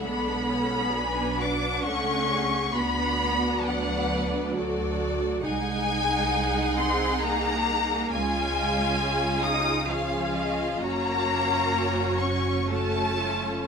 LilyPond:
<<
  \new Staff \with { instrumentName = "Violin section" } { \time 3/4 \key b \dorian \tempo 4 = 67 b''4. d'''8 cis'''4 | b''4 fis''4 r4 | \key des \major aes''4. c'''8 bes''4 | aes''4. ees'''8 f''4 |
bes''4. des'''8 a''4 | }
  \new Staff \with { instrumentName = "Violin section" } { \time 3/4 \key b \dorian << { fis''4 gis''8 fis''4. | fis''4 d''4 d''4 | \key des \major ges''2. | f''2 f''8 ees''8 |
des''2 des''4 | } \\ { a'4 b'4 a'8 gis'8 | fis'4 b'4 a'4 | aes'2. | aes'2 aes'4 |
ges'4 ges'4 a'4 | } >> }
  \new Staff \with { instrumentName = "Viola section" } { \time 3/4 \key b \dorian << { d'8 cis'8 d'2 | d'2 fis'4 | \key des \major ees'2. | f'2 f'4 |
ges'2 ges'8 f'8 | } \\ { gis4 fis4 a4 | b4 b4 fis4 | ees'2. | des'2 des'4 |
des'2 des'4 | } >> }
  \new Staff \with { instrumentName = "Cello section" } { \time 3/4 \key b \dorian b4. d'8 cis'4 | b4 fis4 r4 | \key des \major aes4. c'8 bes4 | aes4. ees'8 f4 |
bes4. des'8 a4 | }
  \new Staff \with { instrumentName = "Double bass section" } { \clef bass \time 3/4 \key b \dorian b,,2 cis,4 | d,2. | \key des \major c,2. | des,2. |
ges,,2. | }
>>